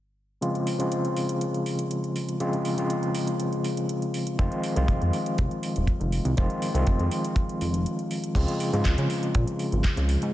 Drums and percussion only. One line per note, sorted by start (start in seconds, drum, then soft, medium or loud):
0.42 closed hi-hat soft
0.55 closed hi-hat soft
0.67 open hi-hat medium
0.80 closed hi-hat soft
0.92 closed hi-hat soft
1.05 closed hi-hat soft
1.17 open hi-hat medium
1.29 closed hi-hat soft
1.41 closed hi-hat soft
1.54 closed hi-hat soft
1.66 open hi-hat medium
1.79 closed hi-hat soft
1.91 closed hi-hat soft
2.04 closed hi-hat soft
2.16 open hi-hat medium
2.29 closed hi-hat soft
2.40 closed hi-hat soft
2.53 closed hi-hat soft
2.65 open hi-hat medium
2.78 closed hi-hat soft
2.90 closed hi-hat soft
3.03 closed hi-hat soft
3.15 open hi-hat loud
3.27 closed hi-hat soft
3.40 closed hi-hat soft
3.53 closed hi-hat soft
3.64 open hi-hat loud
3.77 closed hi-hat soft
3.89 closed hi-hat soft
4.02 closed hi-hat soft
4.14 open hi-hat loud
4.27 closed hi-hat soft
4.39 kick loud
4.39 closed hi-hat soft
4.52 closed hi-hat soft
4.63 open hi-hat loud
4.76 closed hi-hat soft
4.88 kick loud
4.88 closed hi-hat soft
5.02 closed hi-hat soft
5.13 open hi-hat loud
5.26 closed hi-hat soft
5.38 kick loud
5.38 closed hi-hat soft
5.51 closed hi-hat soft
5.63 open hi-hat loud
5.76 closed hi-hat soft
5.87 kick loud
5.87 closed hi-hat soft
6.01 closed hi-hat soft
6.12 open hi-hat loud
6.25 closed hi-hat soft
6.37 kick loud
6.37 closed hi-hat soft
6.50 closed hi-hat soft
6.62 open hi-hat loud
6.75 closed hi-hat soft
6.87 kick loud
6.87 closed hi-hat soft
7.00 closed hi-hat soft
7.11 open hi-hat loud
7.24 closed hi-hat soft
7.36 kick loud
7.36 closed hi-hat soft
7.49 closed hi-hat soft
7.61 open hi-hat loud
7.74 closed hi-hat soft
7.86 closed hi-hat soft
7.99 closed hi-hat soft
8.11 open hi-hat loud
8.24 closed hi-hat soft
8.35 kick loud
8.35 closed hi-hat medium
8.35 crash medium
8.48 closed hi-hat soft
8.60 open hi-hat loud
8.73 closed hi-hat soft
8.85 kick loud
8.85 clap loud
8.85 closed hi-hat medium
8.98 closed hi-hat soft
9.10 open hi-hat medium
9.23 closed hi-hat soft
9.35 kick loud
9.35 closed hi-hat medium
9.47 closed hi-hat soft
9.59 open hi-hat loud
9.72 closed hi-hat soft
9.84 kick loud
9.84 clap loud
9.84 closed hi-hat medium
9.97 closed hi-hat soft
10.09 open hi-hat loud
10.22 closed hi-hat soft